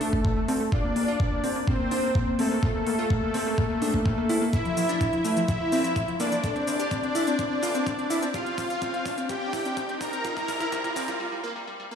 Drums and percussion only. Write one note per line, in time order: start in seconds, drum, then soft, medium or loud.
0.01 open hi-hat loud
0.13 kick medium
0.25 kick loud
0.48 open hi-hat loud
0.72 kick loud
0.96 open hi-hat loud
1.20 kick loud
1.44 open hi-hat loud
1.68 kick loud
1.91 open hi-hat loud
2.15 kick loud
2.39 open hi-hat loud
2.63 kick loud
2.87 open hi-hat loud
3.10 kick loud
3.34 open hi-hat loud
3.58 kick loud
3.82 open hi-hat loud
3.94 kick medium
4.06 kick loud
4.29 open hi-hat loud
4.53 kick loud
4.53 closed hi-hat medium
4.53 shaker soft
4.65 closed hi-hat soft
4.77 open hi-hat loud
4.77 shaker medium
4.89 closed hi-hat soft
4.89 shaker soft
5.01 kick loud
5.01 closed hi-hat medium
5.01 shaker soft
5.13 closed hi-hat soft
5.25 open hi-hat loud
5.25 shaker medium
5.37 closed hi-hat soft
5.37 shaker soft
5.48 kick loud
5.48 closed hi-hat medium
5.48 shaker soft
5.72 open hi-hat loud
5.72 shaker medium
5.84 closed hi-hat soft
5.84 shaker soft
5.96 kick loud
5.96 closed hi-hat medium
5.96 shaker soft
6.08 closed hi-hat soft
6.20 open hi-hat loud
6.20 shaker medium
6.32 closed hi-hat soft
6.32 shaker soft
6.44 kick loud
6.44 closed hi-hat medium
6.44 shaker soft
6.56 closed hi-hat soft
6.67 open hi-hat loud
6.67 shaker medium
6.80 closed hi-hat medium
6.80 shaker soft
6.91 kick loud
6.91 closed hi-hat medium
6.91 shaker soft
7.03 closed hi-hat soft
7.15 open hi-hat loud
7.15 shaker medium
7.27 closed hi-hat medium
7.27 shaker soft
7.39 kick loud
7.39 closed hi-hat medium
7.39 shaker soft
7.63 open hi-hat loud
7.63 shaker medium
7.75 closed hi-hat medium
7.75 shaker soft
7.87 kick loud
7.87 closed hi-hat medium
7.87 shaker soft
7.99 closed hi-hat soft
8.10 open hi-hat loud
8.10 shaker medium
8.23 closed hi-hat medium
8.23 shaker soft
8.34 kick loud
8.34 closed hi-hat medium
8.34 shaker soft
8.46 closed hi-hat soft
8.58 kick loud
8.58 open hi-hat loud
8.58 shaker medium
8.70 closed hi-hat medium
8.70 shaker soft
8.82 kick loud
8.82 closed hi-hat medium
8.82 shaker soft
8.94 closed hi-hat soft
9.06 kick loud
9.06 open hi-hat medium
9.06 shaker medium
9.18 closed hi-hat medium
9.18 shaker soft
9.29 kick loud
9.29 closed hi-hat medium
9.29 shaker soft
9.53 kick loud
9.53 open hi-hat loud
9.53 shaker medium
9.65 closed hi-hat medium
9.65 shaker soft
9.77 kick loud
9.77 closed hi-hat medium
9.77 shaker soft
9.89 closed hi-hat soft
10.01 kick loud
10.01 open hi-hat loud
10.01 shaker medium
10.13 closed hi-hat medium
10.13 shaker soft
10.25 kick loud
10.25 closed hi-hat medium
10.25 shaker soft
10.37 kick medium
10.37 closed hi-hat soft
10.37 shaker soft
10.48 kick loud
10.48 open hi-hat loud
10.48 shaker medium
10.61 kick loud
10.61 closed hi-hat medium
10.61 shaker soft
10.72 kick loud
10.72 closed hi-hat medium
10.72 shaker soft
10.84 kick medium
10.84 closed hi-hat soft
10.96 kick loud
10.96 open hi-hat loud
10.96 shaker medium
11.08 kick medium
11.08 closed hi-hat medium
11.08 shaker soft